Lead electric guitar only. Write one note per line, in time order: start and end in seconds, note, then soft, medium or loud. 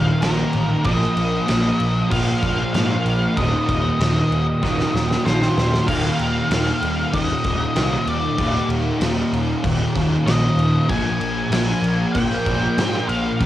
0.00 0.25 F5 loud
0.21 0.87 A#4 medium
0.84 2.11 D#5 loud
2.11 2.72 F5 loud
2.73 3.37 F5 loud
3.37 5.21 D#5 medium
5.26 5.90 C5 medium
5.87 7.14 F5 loud
7.14 8.09 D#5 loud
8.09 8.66 D5 medium
10.27 10.91 D#5 medium
10.89 12.18 G#5 loud
12.12 13.10 G5 loud
13.08 13.46 F5 loud